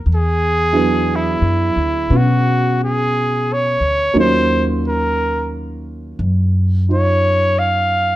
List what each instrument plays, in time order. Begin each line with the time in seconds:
0.06 upright bass E2
0.15 trumpet G#4
0.72 grand piano F#3 B3 D4 E4 G#4
1.16 trumpet E4
1.41 upright bass F#2
1.76 upright bass D2
2.10 upright bass B2, grand piano B3 C#4 F#4
2.17 trumpet F#4
2.84 trumpet G#4
3.53 trumpet C#5
3.80 upright bass D2
4.14 upright bass D#2, grand piano F#3 A#3 C#4 D#4 F4
4.20 trumpet C5
4.88 trumpet A#4
6.19 upright bass F#2
6.89 grand piano D#4 F4
6.93 trumpet C#5
7.59 trumpet F5